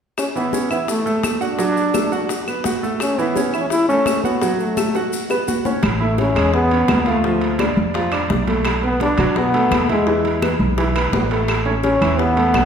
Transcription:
0.18 C#4, high bongo, high conga, claves, maracas
0.36 E3 B3 E4, high conga, maracas
0.53 C#4 C#5, high bongo, high conga, maracas
0.70 B3 E4 E5, high conga, claves, maracas
0.88 A3, high bongo, high conga, maracas
1.06 A3 A4, high conga, maracas
1.23 high bongo, low bongo, high conga, claves, maracas
1.41 D4 F#4 F#5, maracas
1.59 F#3 F#4, high bongo, high conga, maracas
1.76 high bongo, high conga, maracas
1.94 A3 A4, high bongo, high conga, claves, maracas
2.12 F#4 F#5, high bongo, high conga, maracas
2.29 high bongo, high conga, maracas
2.47 B3 B4, high bongo, high conga, claves, maracas
2.64 F#4 F#5, high bongo, low bongo, high conga, maracas
2.83 A3 A4, maracas
3.00 C#4, high bongo, high conga, claves, maracas
3.18 E3 B3 E4, high conga, maracas
3.35 C#4 C#5, high bongo, high conga, maracas
3.53 E4 E5, high conga, claves, maracas
3.61 C#4
3.70 E4, high bongo, high conga, maracas
3.89 A3 C#4 A4, high conga, maracas
4.06 high bongo, low bongo, high conga, claves, maracas
4.24 B3 F#4 F#5, high conga, maracas
4.42 F#3 F#4, high bongo, high conga, maracas
4.59 A3, high bongo, high conga, maracas
4.77 A3 A4, high bongo, high conga, claves, maracas
4.95 F#4 F#5, high bongo, high conga, maracas
5.13 high conga, maracas
5.30 B3 B4, high bongo, high conga, claves, maracas
5.48 F#4 F#5, high conga, maracas
5.65 C#4 C#5, low bongo, high conga, maracas
5.83 A1, high bongo, high conga, high timbale, claves
6.00 A3 E4 E5, high conga
6.18 C#4, high bongo, high conga, high timbale
6.35 E2 G#3 G#4, high conga, high timbale, claves
6.54 B3, high bongo, high conga
6.71 C#4 C#5, high conga, high timbale
6.88 D2, high bongo, low bongo, high conga, high timbale, low timbale, claves
7.06 A3 F4 F5, high timbale
7.24 F3 F4, high bongo, high conga
7.41 high bongo, high conga, high timbale
7.59 D4 D5, high bongo, high conga, high timbale, claves
7.77 F2, high bongo, high conga
7.94 F3 F4, high bongo, high conga, high timbale
8.12 D4 D5, high bongo, high conga, high timbale, claves
8.30 B1, high bongo, low bongo, high conga
8.47 A3 A4, high conga, high timbale
8.65 high bongo, high conga, high timbale, claves
8.83 B3 B4, high conga
9.00 D4, high bongo, high conga, high timbale
9.18 B2 F#3 F#4, high conga, high timbale, claves
9.36 B3, high bongo, high conga
9.54 A3 A4, high conga, high timbale
9.71 E2, high bongo, low bongo, high conga, high timbale, claves
9.89 G#3 E4 E5, high conga, high timbale
10.07 E3 E4, high bongo, high conga
10.25 high bongo, high conga, high timbale
10.42 B3 B4, high bongo, high conga, high timbale, claves
10.59 B1, high bongo, high conga
10.78 E3 E4, high bongo, high conga, high timbale
10.95 B3 B4, high bongo, high conga, high timbale, claves
11.13 A1, high bongo, low bongo, high conga, low timbale
11.31 A3 A4, high timbale
11.48 high bongo, high conga, high timbale, claves
11.65 A3 C#4 C#5, high conga
11.83 C#4, high bongo, high conga, high timbale
12.01 E2 E3 E4, high conga, high timbale, claves
12.19 B3, high bongo, high conga
12.37 A3 A4, high conga, high timbale
12.54 B1, high bongo, low bongo, high conga, high timbale, low timbale, claves

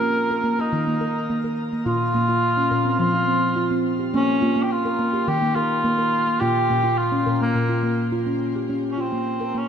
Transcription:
Already playing: A#4
0.02 A#3
0.31 A#4
0.44 A#3
0.59 D#4 A#4
0.72 D#3
0.88 A#3
1.01 A#4
1.30 A#3
1.44 A#4
1.73 A#3
1.86 A#2 F4
2.14 A#2 A#3
2.29 F4
2.57 C#4
2.71 A#2 A#4
2.85 C4
2.99 F3 F4
3.14 F4
3.28 C4
3.56 F4
3.71 C4
3.99 G4
4.14 A#3 C#4
4.42 A#3 F4
4.56 A#3
4.63 G4
4.72 F4
4.85 A#4
4.99 A#3
5.14 G4
5.28 D#3 G4
5.42 A#3
5.55 F4 A#4
5.84 A#3
5.98 A#4
6.27 A#3
6.41 A#2 F4 G4
6.70 A#2 A#3
6.84 F4
6.98 F4
7.12 C#4
7.26 A#2 A#4
7.41 A#3
7.55 A#2
7.69 F4
7.83 A#3
8.12 F4
8.27 C#4
8.56 G4
8.70 C#4
8.91 C#4
8.98 C4 F4
9.12 A#3
9.41 A#4
9.54 A#3 C#4

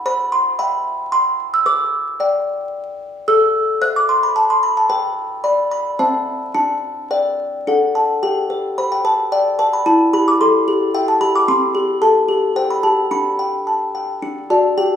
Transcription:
0.06 C5 B5
0.32 C6
0.59 E5 G5 B5
1.12 C6
1.54 E6
1.66 B4 D6
2.20 D5 G5
3.28 A4 E6
3.81 C5 E5 F#6
3.96 D6
4.09 C6
4.23 B5
4.36 A5
4.50 C6
4.63 B5
4.77 A5
4.90 B4 G5
5.44 D5 B5
5.71 B5
5.99 C4 C5 E5 A5
6.54 D4 A5
7.11 B4 D5 G5
7.67 D4 A4 F#5
7.95 A5
8.23 G4 G5
8.50 B4
8.78 C5 B5
8.92 G5
9.05 B4 A5
9.32 D5 G5
9.59 B4 A5
9.73 B5
9.86 E4 A5
10.13 G4 B5
10.28 D6
10.41 A4 C6
10.68 G4
10.95 E5 G5
11.08 A5
11.21 G4 B5
11.35 D6
11.48 C4 C6
11.75 G4
12.02 A4 A5
12.28 G4
12.56 C5 G5
12.71 B5
12.83 G4 A5
13.11 D4 B5
13.39 G5
13.67 A5
13.95 G5
14.22 D4
14.50 F#4 D5 A5
14.78 G4 G5

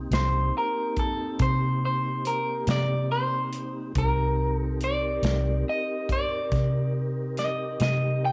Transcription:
Already playing: A#3 C4 D#4 G4
0.11 C2 C5, snare, closed hi-hat
0.58 A#4
0.97 A4, kick, closed hi-hat
1.39 C3 C5, kick, closed hi-hat
1.85 C5
2.25 A#4, closed hi-hat
2.67 C3 D5, snare, closed hi-hat
3.12 C5
3.53 closed hi-hat
3.95 C2 C4 D#4 G4 A#4, kick, closed hi-hat
4.57 A4
4.81 D5, closed hi-hat
5.23 C2, snare, closed hi-hat
5.69 D#5
6.09 D5, kick, closed hi-hat
6.52 C3, kick, snare, closed hi-hat
7.37 D#5, snare, closed hi-hat
7.80 C3 D#5, snare, closed hi-hat
8.25 G5

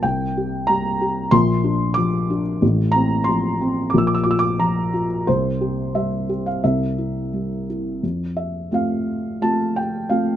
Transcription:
0.03 C2 C3 G5
0.37 G4
0.67 G3 A#5
1.01 G4
1.31 A#1 A#2 C6
1.64 D4
1.94 F3 D6
2.30 D4
2.62 A1 A2
2.92 C4 A#5
3.24 C6
3.28 F3
3.61 C4
3.90 A#2 D6
3.94 A#1 E6
4.07 D6
4.14 E6
4.24 F4 D6
4.31 E6
4.39 D6
4.60 F3 A#5
4.93 F4
5.27 C2 C3 C5
5.61 G4
5.95 G3 E5
6.29 G4
6.46 F5
6.64 C2 C3 E5
6.98 E4
7.33 G3
7.70 E4
8.03 F2
8.37 E5
8.71 A3 C4 F4 F5
9.41 A3 C4 F4 A5
9.76 G5
10.09 A3 C4 F4 F5

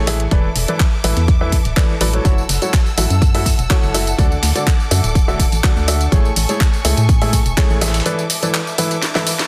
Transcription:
Already playing: A1 A4 G#5 C#6
0.07 E3 E4 G#4 A4 E5, snare, closed hi-hat, open hi-hat
0.20 closed hi-hat
0.31 E1 E3 E4 A4 B4 D5 E5 D6, kick, closed hi-hat
0.56 E1, closed hi-hat, open hi-hat
0.68 E3 E4 A4 B4 D5, closed hi-hat
0.80 kick, snare, clap, closed hi-hat
1.04 A1 E3 E4 A4 B4 E5, closed hi-hat, open hi-hat
1.17 E2, closed hi-hat
1.28 kick, closed hi-hat
1.41 E3 E4 A4 B4 E5
1.52 kick, closed hi-hat, open hi-hat
1.65 D1, closed hi-hat
1.77 E3 E4 A4 B4 D5, kick, snare, clap, closed hi-hat
2.01 A1 F#3 E4 A4 B4 D5, closed hi-hat, open hi-hat
2.13 F#3 E4 A4 B4 C#5, closed hi-hat
2.25 F#1 F#3 E4 F#4 A4 C#5 F#5 E6, kick, closed hi-hat, tambourine
2.38 tambourine
2.49 F#1, snare, closed hi-hat, open hi-hat, tambourine
2.62 F#3 E4 F#4 A4 C#5, closed hi-hat, tambourine
2.73 kick, snare, clap, closed hi-hat, tambourine
2.86 closed hi-hat, tambourine
2.98 A1 F#3 E4 F#4 A4 E5, closed hi-hat, open hi-hat, tambourine
3.10 F#2, closed hi-hat, tambourine
3.22 kick, closed hi-hat, tambourine
3.35 F#3 E4 F#4 A4 E5, open hi-hat, tambourine
3.46 kick, snare, closed hi-hat, open hi-hat, tambourine
3.59 E1, closed hi-hat, tambourine
3.70 F#3 E4 F#4 A4 C#5, kick, snare, clap, closed hi-hat, tambourine
3.83 F#1, tambourine
3.94 E4 F#4 A4 E5, snare, closed hi-hat, open hi-hat, tambourine
4.07 closed hi-hat, tambourine
4.19 D2 D3 D4 F#4 A4 D5 D6, kick, closed hi-hat, tambourine
4.32 tambourine
4.43 D2, snare, closed hi-hat, open hi-hat, tambourine
4.55 D3 D4 F#4 A4 D5, closed hi-hat, tambourine
4.67 kick, clap, closed hi-hat, tambourine
4.80 tambourine
4.91 F#2 D3 D4 F#4 A4 E5, closed hi-hat, open hi-hat, tambourine
5.04 D1, closed hi-hat, tambourine
5.15 kick, closed hi-hat, tambourine
5.28 D3 D4 F#4 A4 E5, tambourine
5.40 kick, closed hi-hat, open hi-hat, tambourine
5.52 A1, closed hi-hat, tambourine
5.64 D3 D4 F#4 A4 D5, kick, snare, clap, closed hi-hat, tambourine
5.76 D2, tambourine
5.88 D4 F#4 A4 E5, closed hi-hat, open hi-hat, tambourine
6.01 closed hi-hat, tambourine
6.12 A1 A3 E4 G#4 A4 C#5 G#5 C#6, kick, closed hi-hat, tambourine
6.25 tambourine
6.36 A1, snare, closed hi-hat, open hi-hat, tambourine
6.49 A3 E4 G#4 A4 C#5, closed hi-hat, tambourine
6.60 kick, snare, clap, closed hi-hat, tambourine
6.73 closed hi-hat, tambourine
6.85 C#2 A3 E4 G#4 A4 E5, closed hi-hat, open hi-hat, tambourine
6.97 A2, closed hi-hat, tambourine
7.09 kick, closed hi-hat, tambourine
7.22 A3 E4 G#4 A4 E5, open hi-hat, tambourine
7.33 kick, snare, closed hi-hat, open hi-hat, tambourine
7.46 E1, closed hi-hat, tambourine
7.57 A3 E4 G#4 A4 C#5, kick, snare, clap, closed hi-hat, tambourine
7.70 A1, tambourine
7.81 E3 E4 G#4 A4 E5, snare, closed hi-hat, open hi-hat, tambourine
7.88 snare, closed hi-hat
7.94 snare, closed hi-hat, tambourine
8.00 snare, closed hi-hat
8.06 E3 E4 A4 B4 D5 E5 D6, closed hi-hat, tambourine
8.19 tambourine
8.30 closed hi-hat, open hi-hat, tambourine
8.43 E3 E4 A4 B4 D5, closed hi-hat, tambourine
8.54 snare, clap, closed hi-hat, tambourine
8.67 tambourine
8.78 E3 E4 A4 B4 E5, closed hi-hat, open hi-hat, tambourine
8.91 closed hi-hat, tambourine
9.02 snare, closed hi-hat, tambourine
9.15 E3 E4 A4 B4 E5, snare, tambourine
9.27 snare, closed hi-hat, open hi-hat, tambourine
9.39 snare, closed hi-hat, tambourine

